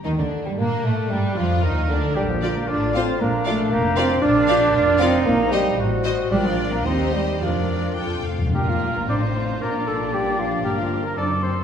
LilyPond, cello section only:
\new Staff \with { instrumentName = "Cello section" } { \clef bass \time 2/4 \key g \minor \tempo 4 = 114 ees16 d8 g16 bes8 a8 | g8 f8 ees8 d8 | g16 f8 bes16 d'8 c'8 | bes8 a8 bes8 c'8 |
\key bes \major d'4. c'8 | bes8 g8 r4 | g16 f8 bes16 c'8 g8 | f4 r4 |
bes,4 a,4 | bes,2 | g,4 fis,4 | }